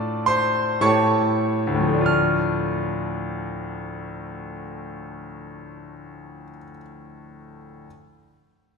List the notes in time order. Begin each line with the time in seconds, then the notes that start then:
Already playing: A2 A3 D4 F4 D5 A5 D6
0.26 C5 C6
0.81 A2 A3 E4 G4 C#5 A5 C#6
1.67 D2
1.74 A2
1.81 F3
1.87 A3
1.94 D4
2.01 F4
2.06 F6